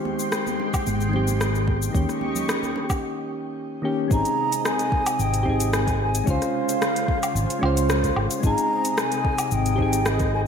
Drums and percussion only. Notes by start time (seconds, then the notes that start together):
0.05 high bongo, high conga
0.19 cabasa
0.32 cross-stick, cabasa
0.47 high conga, cabasa
0.59 high bongo
0.74 kick, high bongo, cabasa, low woodblock
0.87 high conga, cabasa
1.01 cabasa
1.13 low conga
1.27 high bongo, high conga, cabasa
1.41 cross-stick, cabasa
1.55 cabasa
1.67 kick, high conga
1.82 cabasa
1.95 kick, cabasa
2.09 cross-stick, cabasa
2.21 high bongo, high conga
2.35 low conga, cabasa
2.49 cross-stick, cabasa
2.63 high conga, cabasa
2.76 high bongo
2.89 kick, high bongo, cabasa, low woodblock
4.11 kick, cabasa
4.25 closed hi-hat, cabasa
4.52 closed hi-hat, cabasa
4.65 cross-stick, cabasa
4.79 closed hi-hat, cabasa
4.92 kick
5.06 closed hi-hat, cabasa, low woodblock
5.20 cabasa
5.34 closed hi-hat, cabasa
5.46 kick
5.60 closed hi-hat, cabasa
5.73 cross-stick, cabasa
5.87 kick, closed hi-hat, cabasa
6.15 closed hi-hat, cabasa
6.27 kick, cabasa
6.42 cross-stick, closed hi-hat, cabasa
6.69 closed hi-hat, cabasa
6.82 cross-stick, cabasa
6.96 closed hi-hat, cabasa
7.08 kick
7.23 closed hi-hat, cabasa, low woodblock
7.36 cabasa
7.50 closed hi-hat, cabasa
7.63 low woodblock
7.77 closed hi-hat, cabasa
7.90 cross-stick, cabasa
8.04 kick, closed hi-hat, cabasa
8.16 low woodblock
8.31 closed hi-hat, cabasa
8.43 kick, cabasa
8.58 closed hi-hat, cabasa
8.85 closed hi-hat, cabasa
8.98 cross-stick, cabasa
9.12 closed hi-hat, cabasa
9.25 kick
9.38 closed hi-hat, cabasa, low woodblock
9.51 cabasa
9.66 closed hi-hat, cabasa
9.79 kick
9.93 closed hi-hat, cabasa
10.06 cross-stick, cabasa
10.20 kick, closed hi-hat, cabasa